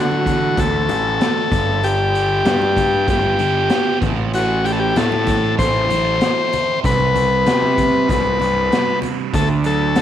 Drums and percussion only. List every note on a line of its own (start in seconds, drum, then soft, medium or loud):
0.11 high conga medium
0.26 kick medium
0.26 closed hi-hat medium
0.26 low conga medium
0.57 kick loud
0.57 closed hi-hat medium
0.89 closed hi-hat medium
0.89 high conga medium
1.21 snare loud
1.21 closed hi-hat medium
1.52 kick medium
1.52 closed hi-hat medium
1.52 low conga medium
1.83 closed hi-hat medium
2.15 closed hi-hat medium
2.45 snare loud
2.45 closed hi-hat medium
2.45 low conga medium
2.62 high conga medium
2.77 kick medium
2.77 closed hi-hat medium
2.77 low conga medium
3.08 kick loud
3.08 closed hi-hat medium
3.39 closed hi-hat medium
3.39 high conga medium
3.70 snare loud
3.70 closed hi-hat medium
4.02 kick loud
4.02 closed hi-hat medium
4.02 low conga medium
4.34 closed hi-hat medium
4.65 closed hi-hat medium
4.96 snare loud
4.96 closed hi-hat medium
4.96 low conga medium
5.12 high conga medium
5.27 kick medium
5.27 closed hi-hat medium
5.27 low conga medium
5.59 kick medium
5.59 closed hi-hat medium
5.90 closed hi-hat medium
5.90 high conga medium
6.21 snare loud
6.21 closed hi-hat medium
6.53 closed hi-hat medium
6.53 low conga medium
6.84 kick loud
6.84 closed hi-hat medium
7.00 high conga medium
7.16 closed hi-hat medium
7.16 high conga medium
7.16 low conga medium
7.46 snare loud
7.46 closed hi-hat medium
7.46 low conga medium
7.62 high conga medium
7.78 kick medium
7.78 closed hi-hat medium
7.78 low conga medium
8.09 kick loud
8.09 closed hi-hat medium
8.09 high conga medium
8.39 closed hi-hat medium
8.39 high conga medium
8.72 snare loud
8.72 closed hi-hat medium
9.02 closed hi-hat medium
9.02 low conga medium
9.34 kick loud
9.34 closed hi-hat medium
9.64 closed hi-hat medium
9.95 snare loud
9.95 closed hi-hat medium
9.95 low conga medium